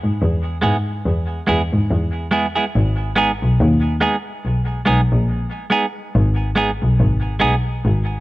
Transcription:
0.04 G#2
0.22 E2
0.62 G#2 G#3 B3 E4 G#4
1.06 E2
1.47 E2 G#3 B3 E4 G#4
1.73 G#2
1.91 E2
2.31 G#3 B3 E4 G#4
2.56 G#3 B3 E4 G#4
2.75 G#1
3.16 G#3 B3 D#4 G#4
3.42 B1
3.60 D#2
4.01 G#3 B3 D#4 G#4
4.45 B1
4.86 B1 G#3 B3 D#4 G#4
5.12 A#1
5.70 G#3 B3 D#4 G#4
6.15 G#1
6.56 G#3 B3 D#4 G#4
6.82 B1
7.00 G#1
7.40 B1 G#3 B3 D#4 G#4
7.85 G#1

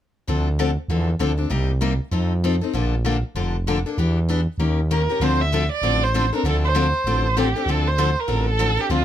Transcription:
0.28 D2 D3 F3 C4 D4 A4
0.59 D3 F3 C4 D4 A4
0.88 E2 D3 F3 C4 D4 A4
1.19 D2 D3 F3 C4 D4 A4
1.37 C4 D4 A4
1.50 C2 C3 G3 A#3 D#4 G4
1.81 C3 G3 A#3 D#4 G4
2.11 F2 F3 C4 D#4 A4
2.44 F3 C4 D#4 A4
2.61 C4 D#4 A4
2.73 A#1 D3 F3 A#3 D4 A4
3.05 D3 F3 A#3 D4 A4
3.35 F1 D3 F3 A#3 D4 A4
3.67 D3 F3 A#3 D4 A4
3.86 A#3 D4 A4
3.98 E2 E3 B3 D4 G4
4.29 E3 B3 D4 G4
4.58 D#2 D#3 A#3 C#4 G4 A#4
4.91 D#3 A#3 C#4 G4 A#4
5.09 C#4 G4 A#4
5.20 D2 D3 F3 C4 D4 A4 C5
5.41 E5
5.52 D3 F3 C4 D4 A4
5.72 D5
5.82 A1 D3 F3 C4 D4 A4
6.04 C5
6.14 D3 F3 C4 D4 A4
6.33 C4 D4 A4 A#4
6.44 D2 D3 F3 C4 D4 A4
6.49 A4
6.65 C5
6.75 D3 F3 C4 D4 A4
7.04 A1 D3 F3 C4 D4 A4
7.37 D3 F3 C4 D4 G4 A4
7.56 C4 D4 A4
7.66 D2 D3 F3 C4 D4 A4
7.70 A4
7.88 C5
7.98 D3 F3 C4 D4 A4
8.19 A#4
8.28 A1 D3 F3 C4 D4 A4
8.49 A4
8.59 D3 F3 C4 D4 A4
8.77 C4 D4 G4 A4
8.90 D2 D3 F3 C4 D4 F4 A4

